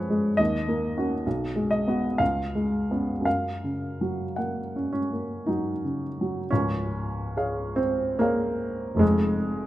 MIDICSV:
0, 0, Header, 1, 2, 480
1, 0, Start_track
1, 0, Key_signature, 6, "major"
1, 0, Tempo, 864553
1, 222, Time_signature, 3, 2, 24, 8
1, 698, Tempo, 943396
1, 1178, Tempo, 1048951
1, 1658, Tempo, 1109057
1, 2618, Tempo, 1032702
1, 3098, Key_signature, -5, "major"
1, 3098, Tempo, 836820
1, 4914, End_track
2, 0, Start_track
2, 0, Title_t, "Upright piano"
2, 0, Program_c, 0, 0
2, 0, Control_c, 0, 64, 127
2, 0, Note_on_c, 0, 41, 43
2, 0, Note_on_c, 0, 53, 37
2, 0, Note_on_c, 0, 56, 38
2, 0, Note_on_c, 0, 61, 40
2, 0, Note_on_c, 0, 68, 38
2, 0, Note_on_c, 0, 71, 62
2, 0, Note_on_c, 0, 73, 61
2, 55, Note_off_c, 0, 56, 0
2, 55, Note_on_c, 0, 56, 40
2, 157, Note_off_c, 0, 53, 0
2, 198, Note_off_c, 0, 41, 0
2, 206, Note_on_c, 0, 75, 67
2, 214, Note_off_c, 0, 73, 0
2, 216, Note_on_c, 0, 39, 46
2, 219, Note_off_c, 0, 56, 0
2, 229, Control_c, 0, 64, 0
2, 230, Note_off_c, 0, 61, 0
2, 232, Note_off_c, 0, 71, 0
2, 235, Note_off_c, 0, 68, 0
2, 300, Control_c, 0, 64, 127
2, 380, Note_on_c, 0, 58, 39
2, 540, Note_on_c, 0, 61, 32
2, 542, Note_on_c, 0, 66, 37
2, 633, Note_off_c, 0, 58, 0
2, 681, Note_off_c, 0, 39, 0
2, 684, Note_off_c, 0, 61, 0
2, 685, Note_off_c, 0, 66, 0
2, 701, Note_on_c, 0, 35, 45
2, 706, Control_c, 0, 64, 0
2, 783, Control_c, 0, 64, 127
2, 851, Note_on_c, 0, 56, 35
2, 919, Note_off_c, 0, 75, 0
2, 926, Note_on_c, 0, 75, 61
2, 1012, Note_on_c, 0, 59, 33
2, 1016, Note_on_c, 0, 66, 36
2, 1110, Note_off_c, 0, 56, 0
2, 1162, Note_off_c, 0, 59, 0
2, 1164, Note_off_c, 0, 66, 0
2, 1165, Note_off_c, 0, 35, 0
2, 1169, Note_on_c, 0, 77, 59
2, 1176, Note_off_c, 0, 75, 0
2, 1176, Note_on_c, 0, 37, 41
2, 1187, Control_c, 0, 64, 0
2, 1270, Control_c, 0, 64, 127
2, 1339, Note_on_c, 0, 56, 32
2, 1503, Note_on_c, 0, 59, 29
2, 1504, Note_on_c, 0, 61, 31
2, 1594, Note_off_c, 0, 56, 0
2, 1638, Note_on_c, 0, 42, 37
2, 1643, Note_off_c, 0, 37, 0
2, 1647, Note_off_c, 0, 59, 0
2, 1648, Note_off_c, 0, 61, 0
2, 1653, Note_off_c, 0, 77, 0
2, 1660, Note_on_c, 0, 77, 53
2, 1666, Control_c, 0, 64, 0
2, 1749, Control_c, 0, 64, 127
2, 1827, Note_on_c, 0, 49, 28
2, 1987, Note_on_c, 0, 54, 28
2, 2081, Note_off_c, 0, 49, 0
2, 2140, Note_on_c, 0, 78, 38
2, 2143, Note_off_c, 0, 77, 0
2, 2148, Note_on_c, 0, 58, 28
2, 2242, Note_off_c, 0, 54, 0
2, 2312, Note_on_c, 0, 61, 29
2, 2377, Note_off_c, 0, 61, 0
2, 2383, Note_on_c, 0, 61, 47
2, 2401, Note_off_c, 0, 58, 0
2, 2471, Note_on_c, 0, 58, 29
2, 2616, Note_on_c, 0, 63, 46
2, 2619, Note_off_c, 0, 61, 0
2, 2625, Note_on_c, 0, 54, 28
2, 2724, Note_off_c, 0, 58, 0
2, 2793, Note_on_c, 0, 49, 27
2, 2872, Note_off_c, 0, 78, 0
2, 2893, Note_off_c, 0, 54, 0
2, 2963, Note_on_c, 0, 54, 29
2, 3047, Note_off_c, 0, 49, 0
2, 3070, Note_off_c, 0, 42, 0
2, 3098, Note_off_c, 0, 63, 0
2, 3101, Note_on_c, 0, 61, 62
2, 3104, Note_off_c, 0, 54, 0
2, 3107, Control_c, 0, 64, 0
2, 3110, Note_on_c, 0, 25, 39
2, 3110, Note_on_c, 0, 37, 48
2, 3193, Control_c, 0, 64, 127
2, 3595, Note_on_c, 0, 68, 34
2, 3598, Note_on_c, 0, 73, 36
2, 3600, Note_on_c, 0, 77, 40
2, 3821, Note_on_c, 0, 60, 62
2, 3832, Note_off_c, 0, 61, 0
2, 4050, Note_off_c, 0, 68, 0
2, 4052, Note_off_c, 0, 73, 0
2, 4053, Note_off_c, 0, 77, 0
2, 4065, Note_off_c, 0, 60, 0
2, 4067, Note_on_c, 0, 58, 64
2, 4076, Note_on_c, 0, 68, 34
2, 4080, Note_on_c, 0, 77, 37
2, 4081, Note_on_c, 0, 73, 34
2, 4503, Note_on_c, 0, 29, 39
2, 4512, Note_on_c, 0, 41, 49
2, 4523, Note_off_c, 0, 68, 0
2, 4526, Note_off_c, 0, 25, 0
2, 4526, Note_off_c, 0, 37, 0
2, 4526, Note_off_c, 0, 73, 0
2, 4526, Note_off_c, 0, 77, 0
2, 4527, Note_on_c, 0, 56, 63
2, 4542, Note_off_c, 0, 58, 0
2, 4551, Control_c, 0, 64, 0
2, 4625, Control_c, 0, 64, 127
2, 4914, Note_off_c, 0, 29, 0
2, 4914, Note_off_c, 0, 41, 0
2, 4914, Note_off_c, 0, 56, 0
2, 4914, End_track
0, 0, End_of_file